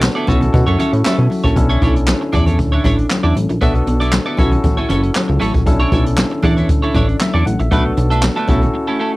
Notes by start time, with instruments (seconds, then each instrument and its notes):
Already playing: tine electric piano B3 D4 F#4 A4
0.02 muted clean electric guitar stroke, snare, clap, high conga
0.15 clean electric guitar B3 E4 A4 D5
0.27 analog synth bass B1, clean electric guitar C#4 E4 A4 C#5, tine electric piano C#4 E4 F#4 A4 A5, kick, closed hi-hat, muted conga
0.41 muted clean electric guitar stroke, closed hi-hat, low conga
0.53 analog synth bass B2, tine electric piano F#5, muted clean electric guitar stroke, kick, closed hi-hat, low conga
0.67 analog synth bass F#2, clean electric guitar C#4 E4 A4 C#5, closed hi-hat
0.79 clean electric guitar C#4 E4 A4 C#5, closed hi-hat, muted conga, low conga
0.93 analog synth bass A2, muted clean electric guitar stroke, closed hi-hat
1.04 clean electric guitar C#4 E4 A4 E5, tine electric piano E5, snare, clap, high conga
1.18 analog synth bass B2, muted clean electric guitar stroke, closed hi-hat
1.30 muted clean electric guitar stroke, open hi-hat, high conga
1.44 analog synth bass A#1, clean electric guitar C#4 E4 A4 C#5, kick, closed hi-hat
1.56 analog synth bass B1, tine electric piano C#4 D4 E4 A4, muted clean electric guitar stroke, kick, closed hi-hat, muted conga
1.69 clean electric guitar D4 E4 A4 C#5, closed hi-hat
1.82 analog synth bass B1, clean electric guitar D4 E4 A4 C#5, kick, closed hi-hat
1.96 muted clean electric guitar stroke, closed hi-hat
2.07 muted clean electric guitar stroke, snare, clap, high conga
2.21 muted clean electric guitar stroke
2.33 analog synth bass E2, clean electric guitar D4 E4 A4 D5, kick, closed hi-hat, muted conga
2.46 clean electric guitar D4 E4 A4 C#5, closed hi-hat, low conga
2.59 analog synth bass D2, muted clean electric guitar stroke, kick, closed hi-hat
2.72 clean electric guitar D4 E4 A4 C#5
2.84 analog synth bass A1, clean electric guitar D4 E4 A4 C#5, kick, closed hi-hat, muted conga, low conga
2.98 muted clean electric guitar stroke, closed hi-hat
3.10 muted clean electric guitar stroke, snare, clap, high conga
3.23 analog synth bass E2, clean electric guitar D4 E4 A4 D5
3.35 analog synth bass A1, muted clean electric guitar stroke, closed hi-hat, high conga
3.49 analog synth bass A#1, muted clean electric guitar stroke, closed hi-hat
3.61 analog synth bass B1, clean electric guitar B3 E4 A4 E5, tine electric piano B3 D4 F#4 A4, kick, closed hi-hat, muted conga
3.75 muted clean electric guitar stroke, closed hi-hat
3.87 analog synth bass B1, muted clean electric guitar stroke, closed hi-hat, muted conga
4.00 clean electric guitar B3 E4 A4 D5, closed hi-hat
4.12 muted clean electric guitar stroke, snare, clap, high conga
4.26 clean electric guitar B3 E4 A4 D5
4.37 analog synth bass B1, tine electric piano C#4 E4 F#4 A4, clean electric guitar C#4 E4 A4 C#5, kick, closed hi-hat, muted conga
4.51 muted clean electric guitar stroke, closed hi-hat, low conga
4.63 analog synth bass A1, muted clean electric guitar stroke, kick, closed hi-hat, low conga
4.77 clean electric guitar C#4 E4 A4 C#5
4.89 analog synth bass F#1, clean electric guitar C#4 E4 A4 C#5, closed hi-hat, muted conga, low conga
5.03 muted clean electric guitar stroke, closed hi-hat
5.15 muted clean electric guitar stroke, snare, clap, high conga
5.28 analog synth bass C#2, muted clean electric guitar stroke
5.40 analog synth bass A1, clean electric guitar C#4 E4 A4 C#5, closed hi-hat, high conga
5.54 analog synth bass A#1, muted clean electric guitar stroke, kick, closed hi-hat
5.66 analog synth bass B1, tine electric piano C#4 D4 E4 A4, muted clean electric guitar stroke, kick, closed hi-hat, muted conga
5.80 clean electric guitar D4 E4 A4 C#5
5.92 analog synth bass B1, clean electric guitar D4 E4 A4 C#5, kick, closed hi-hat, muted conga
6.05 muted clean electric guitar stroke, closed hi-hat
6.18 muted clean electric guitar stroke, snare, clap, high conga
6.31 muted clean electric guitar stroke
6.42 analog synth bass E2, clean electric guitar D4 E4 A4 D5, kick, closed hi-hat, muted conga
6.57 clean electric guitar D4 E4 A4 C#5, closed hi-hat, low conga
6.69 analog synth bass D2, kick, closed hi-hat
6.82 clean electric guitar D4 E4 A4 C#5, closed hi-hat
6.94 analog synth bass A1, clean electric guitar D4 E4 A4 C#5, tine electric piano D5, kick, closed hi-hat, muted conga, low conga
7.08 muted clean electric guitar stroke, closed hi-hat
7.20 tine electric piano E5, muted clean electric guitar stroke, snare, clap, high conga
7.34 analog synth bass E2, clean electric guitar D4 E4 A4 D5, tine electric piano A5
7.45 analog synth bass A1, tine electric piano F#5, muted clean electric guitar stroke, closed hi-hat, high conga
7.59 analog synth bass A#1, tine electric piano E5, muted clean electric guitar stroke, closed hi-hat
7.71 analog synth bass B1, clean electric guitar A3 D4 E4 B4, tine electric piano B3 D4 F#4 A4, kick, closed hi-hat, muted conga
7.85 muted clean electric guitar stroke
7.97 analog synth bass B1, muted clean electric guitar stroke, closed hi-hat, muted conga
8.10 clean electric guitar A3 D4 E4 A4, closed hi-hat
8.23 muted clean electric guitar stroke, snare, clap, high conga
8.36 clean electric guitar A3 D4 E4 A4, closed hi-hat
8.48 analog synth bass B1, clean electric guitar A3 C#4 E4 A4, tine electric piano C#4 E4 F#4 A4, kick, closed hi-hat, muted conga
8.62 muted clean electric guitar stroke, closed hi-hat, low conga
8.74 muted clean electric guitar stroke
8.87 clean electric guitar A3 C#4 E4 A4
8.99 clean electric guitar A3 C#4 E4 A4
9.13 muted clean electric guitar stroke